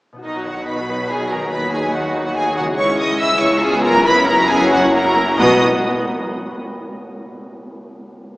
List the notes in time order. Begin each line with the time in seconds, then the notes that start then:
0.13 B2 B3 D#4
0.18 F#4
0.22 B1 B2 D#3 F#3 D#4 D#5
0.34 F#3 F#4
0.45 D#3 D#4 F#4 F#5
0.56 F#3 F#4
0.67 D#3 D#4 B4 B5
0.77 F#3 F#4
0.88 D#3 D#4
0.99 F#3 F#4
1.09 D#3 D#4 G#4 G#5
1.21 F#3 F#4
1.30 D#3 D#4 A#4 A#5
1.38 B3
1.43 F#3 D#4 F#4
1.47 D#2 F#4
1.51 D#2 D#3 D#4 B4 B5
1.63 F#3 F#4
1.72 D#3 D#4 G#4 G#5
1.84 F#3 F#4
1.93 D#3 D#4 F#4 F#5
2.05 F#3 F#4
2.15 D#3 D#4
2.23 F#3 F#4 F#5
2.35 D#3 D#4 G#4 G#5
2.45 F#3 F#4
2.55 C#3 D#3 D#4 F#4 F#5
2.63 F#3 G#3 F#4
2.67 E4
2.72 G#4
2.76 C#2 E3 G#3 E4 C#5 C#6
2.89 G#3 C#4
2.98 E3 E4 D#5 D#6
3.10 G#3 C#4
3.19 E3 E4 E5 E6
3.31 G#3 C#4
3.40 C#3 E3 E4 C#5 C#6
3.48 G#3 B3 C#4
3.53 F4
3.57 B3 F4 G#4
3.62 C#4 F4 G#4 G#5
3.74 B3 G#4
3.83 F#2 C#4 F4 A#4 A#5
3.91 B3 C#4 G#4
3.95 E4
4.00 F#1 C#4 E4 F#4
4.05 F#2 B3 E4 B4 B5
4.17 C#4 F#4
4.25 B3 E4 A#4 A#5
4.37 C#4 F#4
4.48 B3 E4 G#4 G#5
4.59 C#4 F#4
4.70 B3 E4 F#4 F#5
4.75 F#2
4.79 C#4 F#4
4.84 E4
4.88 F#4
4.93 A#3 E4 A#4 A#5
5.04 C#4 F#4
5.15 A#3 E4
5.27 C#4 F#4
5.35 B1 B2 B3 D#4 F#4 D#5
5.39 B2 B3 F#4 D#5 D#6, tam-tam